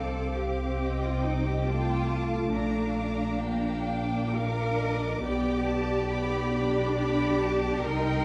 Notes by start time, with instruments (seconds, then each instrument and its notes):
Already playing: double bass section C2, viola section C4, cello section A4, violin section F5 D6
0.37 cello section G4
0.81 violin section D#5 G5
1.02 cello section F4
1.23 cello section D#4
1.46 cello section G4
1.67 viola section A3, cello section F4, violin section G5 A5
2.10 violin section F5
2.52 double bass section A#1, cello section D4, violin section F5 A#5
2.96 violin section A#5
3.39 viola section A#3, violin section F5 G5 A#5
3.87 viola section A#3, violin section D6
4.35 viola section D4, cello section A#4, violin section F5
4.81 violin section D#5
5.22 double bass section B1, viola section B3, cello section G4, violin section D5 G5
5.67 violin section A5
6.10 viola section B3, violin section B5 D6
6.53 viola section D4, violin section D6
6.96 cello section G4, violin section B5
7.42 violin section A5
7.83 double bass section C2, viola section D#4, cello section A#4, violin section D#5 G5 C6